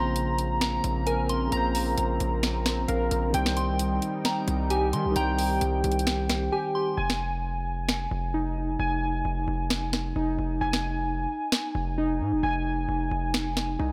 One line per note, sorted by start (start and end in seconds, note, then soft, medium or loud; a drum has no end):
0.00 0.80 A#1 loud
0.00 1.46 C#3 medium
0.00 3.30 C#3 medium
0.00 1.47 A#3 medium
0.00 3.30 A#3 medium
0.00 1.48 C4 medium
0.00 6.94 C4 medium
0.00 1.50 F4 medium
0.00 1.51 C5 medium
0.00 1.51 A#5 loud
0.00 0.57 C6 medium
0.16 closed hi-hat medium
0.38 closed hi-hat medium
0.61 1.04 A#5 medium
0.61 finger snap medium
0.61 snare loud
0.61 closed hi-hat medium
0.84 1.49 A#1 loud
0.84 closed hi-hat medium
1.07 2.87 A#4 medium
1.07 1.28 G#5 medium
1.07 closed hi-hat medium
1.29 1.51 C6 medium
1.29 closed hi-hat medium
1.48 3.28 C#3 medium
1.48 3.29 A#3 medium
1.52 1.96 A#1 loud
1.52 3.30 C4 medium
1.52 3.32 F4 medium
1.52 1.95 A#5 loud
1.52 3.34 A#5 loud
1.52 closed hi-hat medium
1.57 3.33 C5 medium
1.75 open hi-hat medium
1.98 2.19 A#1 loud
1.98 closed hi-hat medium
2.20 2.86 A#1 loud
2.20 closed hi-hat medium
2.43 finger snap medium
2.43 snare loud
2.43 closed hi-hat medium
2.66 finger snap medium
2.66 cross-stick medium
2.66 snare loud
2.66 closed hi-hat medium
2.88 3.10 A#1 loud
2.88 3.34 A#4 medium
2.88 3.09 F5 medium
2.88 closed hi-hat medium
3.11 3.33 A#1 loud
3.11 3.32 A#4 medium
3.11 closed hi-hat medium
3.29 5.10 D#3 medium
3.29 5.11 G3 medium
3.34 3.99 C2 loud
3.34 6.94 G3 medium
3.34 5.12 C4 medium
3.34 6.94 D#4 medium
3.34 5.13 G4 medium
3.34 5.15 G5 loud
3.34 closed hi-hat medium
3.39 5.15 C5 medium
3.46 finger snap medium
3.46 snare loud
3.57 4.21 C6 medium
3.57 closed hi-hat medium
3.79 closed hi-hat medium
4.02 closed hi-hat medium
4.25 4.68 A#5 medium
4.25 finger snap medium
4.25 snare loud
4.25 closed hi-hat medium
4.48 4.95 C2 loud
4.48 closed hi-hat medium
4.70 6.51 G4 medium
4.70 4.92 G#5 medium
4.70 closed hi-hat medium
4.93 5.07 D#3 loud
4.93 5.15 C6 medium
4.93 closed hi-hat medium
5.05 5.15 C2 loud
5.11 6.92 D#3 medium
5.11 6.93 G3 medium
5.16 5.59 C2 loud
5.16 6.94 C4 medium
5.16 6.95 G4 medium
5.16 6.98 G5 loud
5.16 5.59 A#5 loud
5.16 closed hi-hat medium
5.20 6.96 C5 medium
5.39 open hi-hat medium
5.61 5.83 C2 loud
5.61 closed hi-hat medium
5.84 6.49 C2 loud
5.84 closed hi-hat medium
5.92 closed hi-hat medium
5.99 closed hi-hat medium
6.07 finger snap medium
6.07 snare loud
6.07 closed hi-hat medium
6.29 finger snap medium
6.29 cross-stick medium
6.29 snare medium
6.29 closed hi-hat medium
6.52 6.98 G4 medium
6.52 6.74 G#5 medium
6.75 6.97 C6 medium
6.97 8.07 F1 loud
6.97 8.78 G#5 loud
7.10 finger snap medium
7.10 snare loud
7.89 finger snap medium
7.89 snare loud
8.11 8.77 F1 loud
8.34 10.15 D#4 medium
8.79 9.23 F1 loud
8.79 10.60 G#5 loud
9.25 9.47 F1 loud
9.48 10.13 F1 loud
9.70 finger snap medium
9.70 snare loud
9.93 finger snap medium
9.93 snare medium
10.16 10.38 F1 loud
10.16 11.97 D#4 medium
10.39 10.60 F1 loud
10.61 11.27 F1 loud
10.61 12.42 G#5 loud
10.73 finger snap medium
10.73 snare loud
11.52 finger snap medium
11.52 snare loud
11.75 12.22 F1 loud
11.98 13.78 D#4 loud
12.20 12.34 G#2 loud
12.32 12.43 F1 loud
12.43 12.87 F1 loud
12.43 13.92 G#5 loud
12.89 13.10 F1 loud
13.11 13.77 F1 loud
13.34 finger snap medium
13.34 snare loud
13.57 finger snap medium
13.57 snare medium
13.79 13.92 C2 loud
13.79 13.92 D#4 medium